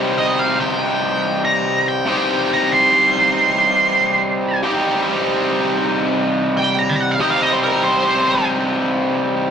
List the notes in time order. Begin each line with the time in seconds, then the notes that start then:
Already playing: C3 G3 C4 D#4 G4
0.18 D#5
0.39 F5
0.60 G5
1.45 A#5
1.88 G5
2.06 C3 G3 C4 D#4 G4
2.54 A#5
2.73 C6
4.63 C3 G3 C4 D#4 G4
6.57 G5
6.79 A#5
6.89 G5
7.01 F#5
7.11 F5
7.20 C3 G3 C4 D#4 G4 D#5
7.30 F5
7.42 D#5
7.53 C5
7.63 A#4
7.84 C5